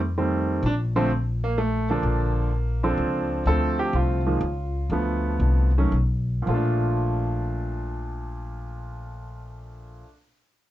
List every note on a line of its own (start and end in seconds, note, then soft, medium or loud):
0.00 0.59 F2 medium
0.18 0.64 D#3 medium
0.18 0.64 G3 medium
0.18 0.64 A3 medium
0.18 0.64 C4 medium
0.63 2.00 A#1 medium
0.63 0.73 D4 medium
0.96 1.09 D3 medium
0.96 1.09 F3 medium
0.96 1.09 A3 medium
0.96 1.09 C4 medium
1.44 1.57 A#3 medium
1.58 1.87 A3 medium
1.90 2.49 D3 medium
1.90 2.49 F3 medium
1.90 3.27 A#3 medium
1.90 2.49 D4 medium
1.90 2.49 A4 medium
2.03 2.94 A#1 medium
2.83 3.43 F3 medium
2.83 3.43 C4 medium
2.83 3.43 D4 medium
2.83 3.43 A4 medium
2.98 3.42 C#2 medium
3.46 3.92 D2 medium
3.46 4.20 D3 medium
3.46 4.20 F3 soft
3.46 4.20 A3 soft
3.46 4.20 C4 medium
3.46 3.76 A4 medium
3.79 3.94 G4 medium
3.93 4.40 C2 medium
3.93 5.90 F4 medium
4.26 4.40 D#3 medium
4.26 4.40 F3 medium
4.26 4.40 G#3 medium
4.26 4.40 A#3 medium
4.41 4.89 C#2 medium
4.90 5.39 D2 medium
4.90 5.70 D3 medium
4.90 5.70 F3 medium
4.90 5.70 A3 soft
4.90 5.70 B3 medium
5.40 5.91 C2 medium
5.78 5.92 D#3 medium
5.78 5.92 F#3 soft
5.78 5.93 A3 soft
5.78 5.92 C#4 medium
5.92 6.45 B1 medium
6.42 10.00 A#2 medium
6.42 10.04 F3 medium
6.47 10.01 A#1 medium
6.47 10.08 A3 medium
6.47 10.03 F4 medium
6.54 10.12 D4 medium